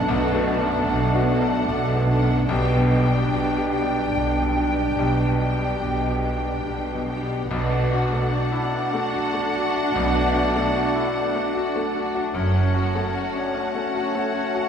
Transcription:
Already playing: grand piano F#2 A3 D4 F#4 A4, french horn section A3 D4, viola section D4, clarinet D4, violin section A4 F#5, flute section A5
0.07 double bass section B1, grand piano B1, cello section B2
0.35 grand piano A3
0.49 viola section D4, violin section A4 F#5
0.62 grand piano F#2
0.88 double bass section B1, cello section B2, grand piano D4
1.15 grand piano F#4
1.29 viola section D4, violin section A4 F#5
1.42 grand piano A4
1.68 double bass section B1, cello section B2, grand piano D4
1.96 grand piano A3
2.10 viola section D4, violin section A4 F#5
2.23 grand piano F#2
2.49 grand piano B1, double bass section B1, cello section B2, french horn section G3 D4, clarinet D4, viola section D4, violin section G4 G5, flute section G5
2.76 grand piano B2
2.89 viola section D4, violin section G4 G5
3.03 grand piano G3
3.30 double bass section B1, cello section B2, grand piano D4
3.57 grand piano G4
3.71 viola section D4, violin section G4 G5
3.85 grand piano D4
4.14 double bass section B1, cello section B2, grand piano G3
4.42 grand piano B2
4.55 viola section D4, violin section G4 G5
4.70 grand piano G3
4.97 double bass section B1, grand piano B1, cello section B2
5.27 grand piano B2
5.40 viola section D4, violin section G4 G5
5.55 grand piano G3
5.82 double bass section B1, cello section B2, grand piano D4
6.10 grand piano G4
6.24 viola section D4, violin section G4 G5
6.38 grand piano D4
6.65 double bass section B1, cello section B2, grand piano G3
6.95 grand piano B2
7.08 viola section D4, violin section G4 G5
7.23 grand piano G3
7.49 double bass section B1, grand piano B1, cello section B2, french horn section A3 D4, violin section B3 F#5, viola section D4, clarinet F#4, oboe D5, flute section A5
7.71 violin section D4, grand piano D4
7.92 grand piano F#4, violin section F#4
8.12 grand piano A3, violin section A4
8.32 grand piano D4, violin section F#4
8.52 violin section D4, grand piano E4
8.73 violin section B3, grand piano D4
8.93 grand piano A3, violin section D4
9.14 grand piano F#4, violin section F#4
9.34 grand piano A3, violin section A4
9.54 grand piano D4, violin section F#4
9.75 violin section D4, grand piano F#4
9.94 double bass section B1, grand piano B1, cello section B2, violin section B3
10.15 grand piano D4, violin section D4
10.36 grand piano F#4, violin section F#4
10.56 grand piano A3, violin section A4
10.75 grand piano D4, violin section F#4
10.95 violin section D4, grand piano E4
11.15 violin section B3, grand piano D4
11.35 grand piano A3, violin section D4
11.55 grand piano F#4, violin section F#4
11.76 grand piano A3, violin section A4
11.96 grand piano D4, violin section F#4
12.15 violin section D4, grand piano F#4
12.34 double bass section F#1, grand piano F#2, cello section F#2, french horn section A3 C#4, violin section A3 F#5, viola section C#4, clarinet F#4, oboe C#5, flute section A5
12.54 grand piano C#4, violin section C#4
12.74 grand piano F#4, violin section F#4
12.95 grand piano A3, violin section A4
13.14 grand piano C#4, violin section F#4
13.34 violin section C#4, grand piano D4
13.53 violin section A3, grand piano C#4
13.74 grand piano A3, violin section C#4
13.93 violin section F#4, grand piano F#4
14.14 grand piano A3, violin section A4
14.32 grand piano C#4, violin section F#4
14.53 violin section C#4, grand piano F#4

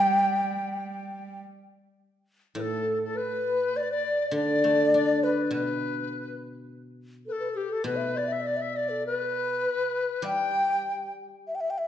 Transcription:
Already playing: cello G3, xiao G5, dizi G5
2.55 guzheng A2, xiao A4, dizi B4
2.61 dizi A4
3.04 dizi A4
3.15 xiao B4, dizi B4
3.76 xiao D5, dizi D5
3.83 xiao B4
3.92 xiao D5, dizi D5
4.31 guzheng D3, dizi D5, xiao D5
4.64 guzheng A3
4.94 guzheng D4, dizi D5
5.23 dizi B4, xiao B4
5.51 guzheng B2, dizi B4, xiao B4
7.26 xiao A4, dizi B4
7.32 dizi A4
7.40 xiao B4
7.51 xiao G4 A4
7.57 dizi G4
7.69 xiao A4, dizi A4
7.84 guzheng B2, xiao B4, dizi B4
7.96 xiao E5
8.12 xiao D5
8.17 dizi D5
8.28 xiao E5, dizi E5
8.41 xiao D5
8.46 dizi D5
8.57 xiao E5
8.61 dizi E5
8.75 xiao D5, dizi D5
8.89 xiao A4
9.06 dizi B4, xiao B4
10.22 guzheng G3, dizi G5
10.27 xiao G5
11.47 xiao E5
11.55 xiao G5
11.61 xiao E5
11.70 xiao G5
11.78 xiao E5

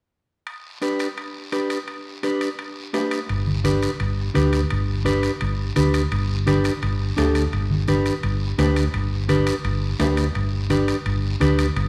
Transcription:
0.47 high timbale, long guiro
0.82 clean electric guitar D4 G4 B4, high timbale, short guiro
0.99 high timbale, short guiro
1.17 high timbale, long guiro
1.52 clean electric guitar D4 G4 B4, high timbale, short guiro
1.70 high timbale, short guiro
1.88 high timbale, long guiro
2.23 clean electric guitar D4 G4 B4, high timbale, short guiro
2.41 high timbale, short guiro
2.59 high timbale, long guiro
2.93 clean electric guitar D4 G4 B4, high timbale, low timbale, short guiro
3.11 high timbale, short guiro
3.29 fingered electric bass G1, high timbale, long guiro
3.47 high conga
3.64 clean electric guitar D4 G4 B4, high conga, high timbale, short guiro
3.82 high timbale, short guiro
4.00 fingered electric bass G1, high timbale, long guiro
4.34 fingered electric bass D2, clean electric guitar D4 G4 B4, high conga, high timbale, short guiro
4.53 high timbale, short guiro
4.70 fingered electric bass G1, high timbale, long guiro
5.05 clean electric guitar D4 G4 B4, high conga, high timbale, short guiro
5.23 high timbale, short guiro
5.41 fingered electric bass G1, high timbale, long guiro
5.76 fingered electric bass D2, clean electric guitar D4 G4 B4, high conga, high timbale, short guiro
5.94 high timbale, short guiro
6.12 fingered electric bass G1, high timbale, long guiro
6.47 clean electric guitar D4 G4 B4, high conga, high timbale, short guiro
6.64 high timbale, short guiro
6.82 fingered electric bass G1, high timbale, long guiro
7.17 fingered electric bass D2, clean electric guitar D4 G4 A4, high conga, high timbale, low timbale, short guiro
7.35 high timbale, short guiro
7.53 fingered electric bass G1, high timbale, long guiro
7.71 high conga
7.88 clean electric guitar D4 G4 B4, high conga, high timbale, short guiro
8.06 high timbale, short guiro
8.23 fingered electric bass G1, high timbale, long guiro
8.58 fingered electric bass D2, clean electric guitar D4 G4 B4, high conga, high timbale, low timbale, short guiro
8.76 high timbale, short guiro
8.94 fingered electric bass G1, high timbale, long guiro
9.29 clean electric guitar D4 G4 B4, high conga, high timbale, short guiro
9.47 high timbale, short guiro
9.65 fingered electric bass G1, high timbale, long guiro
9.99 fingered electric bass D2, clean electric guitar D4 G4 B4, high conga, high timbale, low timbale, short guiro
10.17 high timbale, short guiro
10.35 fingered electric bass G1, high timbale, long guiro
10.70 clean electric guitar D4 G4 B4, high conga, high timbale, short guiro
10.88 high timbale, short guiro
11.06 fingered electric bass G1, high timbale, long guiro
11.40 fingered electric bass D2, clean electric guitar D4 G4 B4, high conga, high timbale, short guiro
11.59 high timbale, short guiro
11.76 fingered electric bass G1, high timbale, long guiro

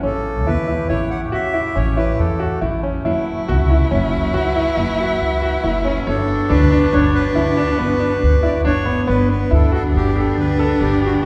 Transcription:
0.03 upright bass A1, woodwind section C#3 A3 G4, grand piano C#4, accordion A4
0.47 upright bass E2, grand piano E4, accordion B4
0.68 grand piano E4
0.88 upright bass A1, grand piano E4, accordion C#5
1.11 accordion F#5
1.32 upright bass E2, grand piano F#4, accordion E5
1.54 grand piano E4
1.75 upright bass A1, grand piano C#4, accordion C#5
1.97 grand piano E4, accordion B4
2.19 upright bass E2, accordion A4
2.40 grand piano F#4
2.61 upright bass A1, grand piano E4
2.83 grand piano C#4
3.05 upright bass F#1, woodwind section E3 F#4, grand piano E4, cello E4
3.48 upright bass C#2, grand piano F#4
3.70 grand piano E4
3.91 upright bass F#1, grand piano C#4
4.34 upright bass C#2, grand piano F#4
4.56 grand piano E4
4.77 upright bass F#1, grand piano E4
5.00 grand piano F#4
5.21 upright bass C#2
5.42 grand piano F#4
5.64 upright bass F#1, grand piano E4
5.85 grand piano C#4
6.07 upright bass G1, woodwind section B3 F#4 G4, cello D4, accordion A4, grand piano C#5
6.50 upright bass D2, grand piano D4, accordion B4
6.71 grand piano D4
6.92 upright bass G1, grand piano D4, accordion C#5
7.15 accordion B4
7.35 upright bass D2, grand piano E4
7.57 grand piano D4
7.78 upright bass G1, grand piano B3
7.99 grand piano D4
8.23 upright bass D2
8.43 grand piano E4, accordion D5
8.65 upright bass G1, grand piano D4, accordion C#5
8.86 grand piano B3
9.07 upright bass G1, woodwind section G3 B3 B4, grand piano B3, cello D4, accordion B4
9.29 grand piano B3, accordion B4
9.51 upright bass D2, grand piano E4, accordion A4
9.72 grand piano F#4, accordion A4
9.95 upright bass G1, accordion G4
10.16 grand piano G4, accordion A4
10.38 upright bass D2, accordion B4
10.59 grand piano A4
10.81 upright bass G1, accordion G4
11.02 accordion F#4, grand piano G4

